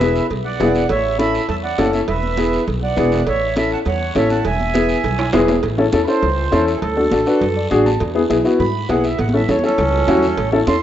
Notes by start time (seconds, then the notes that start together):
Already playing: E1 B4 E5
0.00 B3 E4 G#4, cowbell, high conga, short guiro
0.16 short guiro
0.30 B1, cowbell, low conga, long guiro
0.45 D5 F#5, high conga
0.60 E1 B3 E4 G#4, cowbell, high conga, low conga, low timbale, short guiro
0.75 short guiro
0.89 A1 C#5 E5, cowbell, high conga, long guiro
1.18 C#4 E4 A4 E5 B5, cowbell, high conga, short guiro
1.34 short guiro
1.49 E2 E5 A5, cowbell, low conga, long guiro
1.64 D5 F#5, high conga
1.78 F#1 C#4 E4 A4, cowbell, high conga, low timbale, short guiro
1.93 C#5 E5, high conga, short guiro
2.08 E1 B4 E5, cowbell, high conga, low conga, long guiro
2.23 high conga
2.37 B3 E4 G#4, cowbell, high conga, short guiro
2.53 short guiro
2.67 B1, cowbell, low conga, long guiro
2.82 D5 F#5, high conga
2.97 E1 B3 E4 G#4, cowbell, high conga, short guiro
3.12 high conga, short guiro
3.26 A1 C#5 E5, cowbell, high conga, long guiro
3.56 C#4 E4 A4 E5 B5, cowbell, high conga, short guiro
3.71 F#5 A5, short guiro
3.85 E2 C#5 F#5, cowbell, low conga, long guiro
4.01 high conga
4.15 A1 C#4 E4 A4 C#5 E5, cowbell, high conga, low timbale, short guiro
4.30 F#5 A5, high conga, short guiro
4.44 E1 E5 G#5, cowbell, high conga, low conga, long guiro
4.60 high conga
4.74 B3 E4 G#4, cowbell, high conga, short guiro
4.89 short guiro
5.04 B1, cowbell, low conga, long guiro
5.19 high conga, high timbale
5.33 E1 B3 E4 G#4, cowbell, high conga, low conga, high timbale, short guiro
5.48 low timbale, short guiro
5.63 A1, cowbell, high conga, long guiro
5.78 C#4 E4 A4, high conga
5.93 E2 C#4 E4 A4, cowbell, high conga, short guiro
6.04 C#4 B4, short guiro
6.08 E4 A4 C5
6.22 C#2, cowbell, high conga, low conga, long guiro
6.52 E2 C#4 E4 A4, cowbell, high conga, short guiro
6.67 A4, short guiro
6.77 G#4
6.81 D2 A4, cowbell, high conga, low conga, long guiro
6.96 D4 F#4 A4, high conga
7.11 A1 D4 F#4 A4, cowbell, high conga, short guiro
7.26 D4 F#4 B4, short guiro
7.41 F#2, cowbell, high conga, low conga, long guiro
7.56 D5
7.71 A1 D4 F#4 G#4 F#5, cowbell, high conga, low conga, short guiro
7.86 A5, high conga, short guiro
8.00 E2, cowbell, long guiro
8.15 B3 E4 G#4, high conga
8.30 B1 B3 E4 G#4, cowbell, high conga, short guiro
8.44 B3 E4 F#4, short guiro
8.59 G#2 B5, cowbell, high conga, low conga, long guiro
8.89 B1 B3 E4 G#4 F#5, cowbell, high conga, low timbale, short guiro
9.04 E5, high conga, short guiro
9.19 A1 F#5, cowbell, high conga, long guiro
9.29 high conga
9.33 C#4 E4 A4 E5
9.39 low conga
9.48 E2 C#4 E4 A4 C#5, cowbell, low conga, short guiro
9.59 C#4, high conga
9.63 C#4 E4 A4, short guiro
9.69 low conga
9.78 C#2, cowbell, low conga, long guiro
9.88 low conga
9.98 low conga
10.07 E2 C#4 E4 F#4, cowbell, low conga, low timbale, short guiro
10.17 low conga
10.23 short guiro
10.27 low conga
10.37 A1, cowbell, high conga, long guiro
10.52 C#4 E4 A4, high conga
10.67 E2 C#4 E4 A4 C6, cowbell, high conga, short guiro